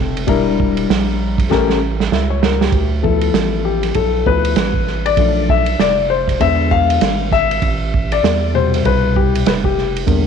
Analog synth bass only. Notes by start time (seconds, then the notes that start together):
Already playing: F1
0.28 E1
0.89 A#1
1.51 A1
2.12 C#2
2.72 D2
3.34 A1
3.95 B1
4.26 D2
4.56 A1
5.17 B1
5.79 F1
6.41 E2
7.01 G#1
7.62 A1
8.23 E2
8.86 C2
9.46 F1
10.07 E2